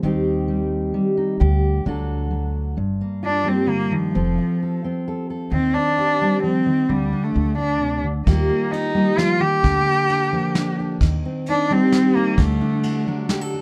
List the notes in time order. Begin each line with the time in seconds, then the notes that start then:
0.03 D#2 D#3 G3 C4 D#4 G4
0.48 G3
0.94 G3
1.17 D#4
1.40 D2 D3 G4
1.85 D2 D3 F#3 D4 F#4 A4
2.31 F#3
2.77 G1 G2
3.01 A#3
3.23 D4 F4
3.44 G3 A#3 C4
3.67 D3 A#3
3.91 D#3 F3
4.15 F1 F3 C4 F4 A4
4.38 F4
4.63 A4
4.84 C4 F4
5.08 A4
5.30 A4
5.52 D#2 D#3 C4
5.74 C4 D4
5.98 G4
6.21 G3 C4
6.43 F3 C4
6.66 D#3
6.89 D2 D3 G3
7.12 D4
7.24 A3
7.34 D2 D3
7.58 D4
7.81 C3
8.04 D3
8.26 D#2 D#3 G3 A#3 F4 G4, kick, ride
8.49 A#3
8.72 D#4 F4, ride
8.95 G3 A#3
9.17 F3 F4, snare, ride
9.40 D#3 G4
9.63 D2 D3, kick, ride
9.86 A#3
10.09 D4, ride
10.32 F3 A#3
10.55 D4, snare, ride
10.80 D4
11.01 D#2 D#3, kick, ride
11.25 C4
11.46 D4 D#4, ride
11.70 G3 C4
11.92 G4, snare, ride
12.16 A#3 D#4
12.37 D2 D3 A3, kick, ride
12.61 D4
12.83 F#4, ride
13.07 F#3 D4
13.29 G4, snare, ride
13.41 A4
13.54 F#4